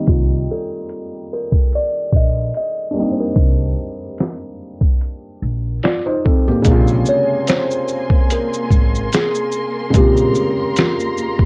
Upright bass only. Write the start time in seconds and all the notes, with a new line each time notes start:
0.08 C2
2.13 A#1
3.37 C2
5.42 A#1
6.48 A1
6.65 A#1
8.71 G#1
9.95 A#1